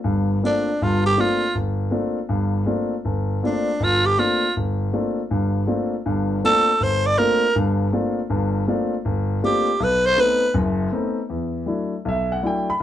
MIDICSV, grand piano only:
0, 0, Header, 1, 2, 480
1, 0, Start_track
1, 0, Tempo, 375000
1, 1014, Time_signature, 4, 2, 24, 8
1, 16420, End_track
2, 0, Start_track
2, 0, Title_t, "Grand piano"
2, 0, Program_c, 0, 0
2, 54, Note_on_c, 0, 43, 74
2, 59, Note_on_c, 0, 31, 66
2, 470, Note_off_c, 0, 43, 0
2, 473, Note_off_c, 0, 31, 0
2, 550, Note_on_c, 0, 57, 48
2, 550, Note_on_c, 0, 58, 44
2, 558, Note_on_c, 0, 60, 46
2, 560, Note_on_c, 0, 62, 47
2, 561, Note_on_c, 0, 65, 49
2, 874, Note_off_c, 0, 57, 0
2, 874, Note_off_c, 0, 58, 0
2, 879, Note_off_c, 0, 60, 0
2, 879, Note_off_c, 0, 62, 0
2, 880, Note_off_c, 0, 65, 0
2, 1042, Note_on_c, 0, 31, 64
2, 1050, Note_on_c, 0, 43, 69
2, 1445, Note_off_c, 0, 31, 0
2, 1449, Note_off_c, 0, 43, 0
2, 1500, Note_on_c, 0, 57, 55
2, 1500, Note_on_c, 0, 58, 45
2, 1504, Note_on_c, 0, 60, 50
2, 1506, Note_on_c, 0, 65, 56
2, 1509, Note_on_c, 0, 62, 47
2, 1830, Note_off_c, 0, 57, 0
2, 1830, Note_off_c, 0, 58, 0
2, 1832, Note_off_c, 0, 60, 0
2, 1833, Note_off_c, 0, 65, 0
2, 1834, Note_off_c, 0, 62, 0
2, 1983, Note_on_c, 0, 31, 71
2, 2395, Note_off_c, 0, 31, 0
2, 2441, Note_on_c, 0, 57, 46
2, 2445, Note_on_c, 0, 60, 49
2, 2448, Note_on_c, 0, 58, 45
2, 2456, Note_on_c, 0, 62, 51
2, 2458, Note_on_c, 0, 65, 55
2, 2781, Note_off_c, 0, 57, 0
2, 2783, Note_off_c, 0, 60, 0
2, 2784, Note_off_c, 0, 58, 0
2, 2788, Note_off_c, 0, 62, 0
2, 2789, Note_off_c, 0, 65, 0
2, 2931, Note_on_c, 0, 43, 71
2, 2935, Note_on_c, 0, 31, 64
2, 3349, Note_off_c, 0, 43, 0
2, 3351, Note_off_c, 0, 31, 0
2, 3405, Note_on_c, 0, 57, 48
2, 3407, Note_on_c, 0, 58, 51
2, 3412, Note_on_c, 0, 62, 51
2, 3415, Note_on_c, 0, 60, 47
2, 3421, Note_on_c, 0, 65, 58
2, 3743, Note_off_c, 0, 57, 0
2, 3744, Note_off_c, 0, 58, 0
2, 3746, Note_off_c, 0, 62, 0
2, 3748, Note_off_c, 0, 60, 0
2, 3751, Note_off_c, 0, 65, 0
2, 3901, Note_on_c, 0, 31, 71
2, 4315, Note_off_c, 0, 31, 0
2, 4387, Note_on_c, 0, 57, 50
2, 4391, Note_on_c, 0, 58, 47
2, 4394, Note_on_c, 0, 60, 48
2, 4403, Note_on_c, 0, 65, 59
2, 4404, Note_on_c, 0, 62, 49
2, 4714, Note_off_c, 0, 57, 0
2, 4716, Note_off_c, 0, 58, 0
2, 4718, Note_off_c, 0, 60, 0
2, 4722, Note_off_c, 0, 62, 0
2, 4722, Note_off_c, 0, 65, 0
2, 4863, Note_on_c, 0, 31, 71
2, 5276, Note_off_c, 0, 31, 0
2, 5345, Note_on_c, 0, 57, 52
2, 5347, Note_on_c, 0, 58, 49
2, 5355, Note_on_c, 0, 62, 49
2, 5358, Note_on_c, 0, 65, 55
2, 5359, Note_on_c, 0, 60, 50
2, 5673, Note_off_c, 0, 57, 0
2, 5674, Note_off_c, 0, 58, 0
2, 5678, Note_off_c, 0, 62, 0
2, 5680, Note_off_c, 0, 60, 0
2, 5680, Note_off_c, 0, 65, 0
2, 5841, Note_on_c, 0, 31, 72
2, 6246, Note_off_c, 0, 31, 0
2, 6311, Note_on_c, 0, 58, 45
2, 6315, Note_on_c, 0, 57, 52
2, 6316, Note_on_c, 0, 60, 49
2, 6320, Note_on_c, 0, 62, 46
2, 6323, Note_on_c, 0, 65, 52
2, 6636, Note_off_c, 0, 58, 0
2, 6638, Note_off_c, 0, 57, 0
2, 6639, Note_off_c, 0, 60, 0
2, 6641, Note_off_c, 0, 62, 0
2, 6642, Note_off_c, 0, 65, 0
2, 6790, Note_on_c, 0, 31, 68
2, 6795, Note_on_c, 0, 43, 69
2, 7200, Note_off_c, 0, 31, 0
2, 7203, Note_off_c, 0, 43, 0
2, 7259, Note_on_c, 0, 58, 43
2, 7261, Note_on_c, 0, 57, 50
2, 7261, Note_on_c, 0, 62, 49
2, 7265, Note_on_c, 0, 65, 57
2, 7267, Note_on_c, 0, 60, 51
2, 7590, Note_off_c, 0, 58, 0
2, 7591, Note_off_c, 0, 57, 0
2, 7591, Note_off_c, 0, 62, 0
2, 7593, Note_off_c, 0, 65, 0
2, 7594, Note_off_c, 0, 60, 0
2, 7753, Note_on_c, 0, 31, 70
2, 7755, Note_on_c, 0, 43, 72
2, 8161, Note_off_c, 0, 31, 0
2, 8162, Note_off_c, 0, 43, 0
2, 8244, Note_on_c, 0, 62, 51
2, 8245, Note_on_c, 0, 57, 55
2, 8245, Note_on_c, 0, 58, 48
2, 8246, Note_on_c, 0, 65, 52
2, 8248, Note_on_c, 0, 60, 43
2, 8563, Note_off_c, 0, 57, 0
2, 8563, Note_off_c, 0, 58, 0
2, 8563, Note_off_c, 0, 62, 0
2, 8564, Note_off_c, 0, 65, 0
2, 8565, Note_off_c, 0, 60, 0
2, 8706, Note_on_c, 0, 31, 69
2, 9117, Note_off_c, 0, 31, 0
2, 9191, Note_on_c, 0, 57, 57
2, 9194, Note_on_c, 0, 58, 50
2, 9197, Note_on_c, 0, 65, 61
2, 9201, Note_on_c, 0, 60, 45
2, 9201, Note_on_c, 0, 62, 45
2, 9516, Note_off_c, 0, 57, 0
2, 9517, Note_off_c, 0, 58, 0
2, 9519, Note_off_c, 0, 65, 0
2, 9521, Note_off_c, 0, 60, 0
2, 9521, Note_off_c, 0, 62, 0
2, 9670, Note_on_c, 0, 31, 73
2, 9674, Note_on_c, 0, 43, 75
2, 10079, Note_off_c, 0, 31, 0
2, 10082, Note_off_c, 0, 43, 0
2, 10145, Note_on_c, 0, 57, 52
2, 10150, Note_on_c, 0, 58, 50
2, 10152, Note_on_c, 0, 60, 47
2, 10154, Note_on_c, 0, 62, 44
2, 10158, Note_on_c, 0, 65, 64
2, 10473, Note_off_c, 0, 57, 0
2, 10476, Note_off_c, 0, 58, 0
2, 10476, Note_off_c, 0, 60, 0
2, 10477, Note_off_c, 0, 62, 0
2, 10479, Note_off_c, 0, 65, 0
2, 10621, Note_on_c, 0, 31, 75
2, 10624, Note_on_c, 0, 43, 66
2, 11034, Note_off_c, 0, 31, 0
2, 11036, Note_off_c, 0, 43, 0
2, 11102, Note_on_c, 0, 57, 52
2, 11108, Note_on_c, 0, 58, 51
2, 11109, Note_on_c, 0, 60, 54
2, 11115, Note_on_c, 0, 65, 67
2, 11116, Note_on_c, 0, 62, 51
2, 11431, Note_off_c, 0, 57, 0
2, 11434, Note_off_c, 0, 58, 0
2, 11434, Note_off_c, 0, 60, 0
2, 11437, Note_off_c, 0, 65, 0
2, 11438, Note_off_c, 0, 62, 0
2, 11585, Note_on_c, 0, 31, 78
2, 11996, Note_off_c, 0, 31, 0
2, 12065, Note_on_c, 0, 57, 52
2, 12067, Note_on_c, 0, 58, 47
2, 12076, Note_on_c, 0, 65, 63
2, 12079, Note_on_c, 0, 60, 53
2, 12079, Note_on_c, 0, 62, 46
2, 12392, Note_off_c, 0, 57, 0
2, 12393, Note_off_c, 0, 58, 0
2, 12398, Note_off_c, 0, 65, 0
2, 12399, Note_off_c, 0, 60, 0
2, 12399, Note_off_c, 0, 62, 0
2, 12543, Note_on_c, 0, 35, 75
2, 12955, Note_off_c, 0, 35, 0
2, 13015, Note_on_c, 0, 57, 58
2, 13023, Note_on_c, 0, 59, 53
2, 13024, Note_on_c, 0, 63, 65
2, 13027, Note_on_c, 0, 60, 49
2, 13347, Note_off_c, 0, 57, 0
2, 13351, Note_off_c, 0, 59, 0
2, 13352, Note_off_c, 0, 63, 0
2, 13353, Note_off_c, 0, 60, 0
2, 13491, Note_on_c, 0, 42, 81
2, 13498, Note_on_c, 0, 30, 78
2, 13908, Note_off_c, 0, 42, 0
2, 13912, Note_off_c, 0, 30, 0
2, 13975, Note_on_c, 0, 57, 60
2, 13983, Note_on_c, 0, 60, 50
2, 13985, Note_on_c, 0, 59, 50
2, 13991, Note_on_c, 0, 63, 55
2, 14307, Note_off_c, 0, 57, 0
2, 14311, Note_off_c, 0, 60, 0
2, 14312, Note_off_c, 0, 59, 0
2, 14316, Note_off_c, 0, 63, 0
2, 14460, Note_on_c, 0, 40, 61
2, 14874, Note_off_c, 0, 40, 0
2, 14926, Note_on_c, 0, 54, 46
2, 14935, Note_on_c, 0, 57, 50
2, 14935, Note_on_c, 0, 62, 44
2, 14943, Note_on_c, 0, 64, 53
2, 15263, Note_off_c, 0, 54, 0
2, 15268, Note_off_c, 0, 57, 0
2, 15268, Note_off_c, 0, 62, 0
2, 15272, Note_off_c, 0, 64, 0
2, 15427, Note_on_c, 0, 35, 73
2, 15469, Note_on_c, 0, 76, 81
2, 15750, Note_off_c, 0, 76, 0
2, 15769, Note_on_c, 0, 78, 81
2, 15838, Note_off_c, 0, 35, 0
2, 15907, Note_on_c, 0, 57, 46
2, 15910, Note_off_c, 0, 78, 0
2, 15911, Note_on_c, 0, 54, 52
2, 15911, Note_on_c, 0, 62, 46
2, 15916, Note_on_c, 0, 64, 54
2, 15956, Note_on_c, 0, 79, 81
2, 16234, Note_off_c, 0, 79, 0
2, 16235, Note_off_c, 0, 57, 0
2, 16236, Note_off_c, 0, 54, 0
2, 16237, Note_off_c, 0, 62, 0
2, 16239, Note_off_c, 0, 64, 0
2, 16253, Note_on_c, 0, 83, 94
2, 16393, Note_off_c, 0, 83, 0
2, 16420, End_track
0, 0, End_of_file